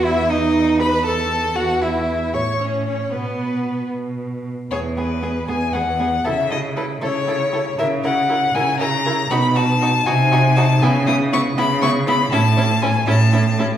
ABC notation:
X:1
M:6/8
L:1/8
Q:3/8=79
K:E
V:1 name="Violin"
e d2 b a2 | f e2 c' c c | B3 z3 | c B2 g f2 |
e d B c3 | e f2 g ^a2 | b a2 g2 a | g d' c' b c' b |
a2 g a2 z |]
V:2 name="Violin"
E D2 B A2 | F E2 c C C | B,3 z3 | G G G G G G |
A A A A A A | ^A A A A A A | F F F F F F | E E E E E E |
E E E E E E |]
V:3 name="Viola"
E D2 B A2 | F E2 c C C | B,3 z3 | B, B, B, B, B, B, |
E E E E E E | E E E E E E | D D D D D D | B, B, B, B, B, B, |
C C C C C C |]
V:4 name="Cello" clef=bass
E,,6 | E,,3 A,,3 | B,,3 B,,2 z | E,,3 E,,3 |
C,3 C,3 | C,3 C,3 | B,,3 ^B,,3 | C,3 C,3 |
A,,3 A,,3 |]